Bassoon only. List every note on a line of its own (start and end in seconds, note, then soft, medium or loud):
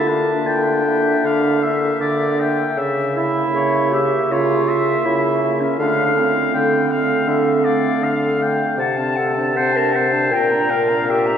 0.00 0.36 D3 medium
0.45 1.15 D3 medium
1.24 1.92 D3 medium
2.00 2.68 D3 medium
2.77 3.44 C#3 medium
3.53 4.14 C#3 medium
4.31 4.97 C#3 medium
5.05 5.71 C#3 medium
5.79 6.46 D3 medium
6.54 7.19 D3 medium
7.27 7.93 D3 medium
8.02 8.70 D3 medium
8.78 10.33 C3 medium
10.31 11.38 A#2 medium